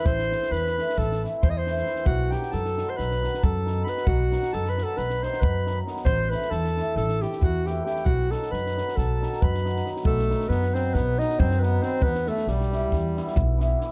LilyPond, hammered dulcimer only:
\new Staff \with { instrumentName = "Hammered dulcimer" } { \time 9/8 \tempo 4. = 90 r8 <e a c' e'>8 r8 <e a c' e'>8 r8 <e a c' e'>8 r8 <e a c' e'>8 <e a c' e'>8 | r8 <dis fis b dis'>8 r8 <dis fis b dis'>8 r8 <dis fis b dis'>8 r8 <dis fis b dis'>8 <dis fis b dis'>8 | r8 <dis fis b dis'>8 r8 <dis fis b dis'>8 r8 <dis fis b dis'>8 r8 <dis fis b dis'>8 <dis fis b dis'>8 | r8 <e a c' e'>8 r8 <e a c' e'>8 r8 <e a c' e'>8 r8 <e a c' e'>8 <e a c' e'>8 |
r8 <dis fis b dis'>8 r8 <dis fis b dis'>8 r8 <dis fis b dis'>8 r8 <dis fis b dis'>8 <dis fis b dis'>8 | r8 <dis fis b dis'>8 r8 <dis fis b dis'>8 r8 <dis fis b dis'>8 r8 <dis fis b dis'>8 <dis fis b dis'>8 | r8 <e g b e'>8 r8 <e g b e'>8 r8 <e g b e'>8 r8 <e g b e'>8 <e g b e'>8 | }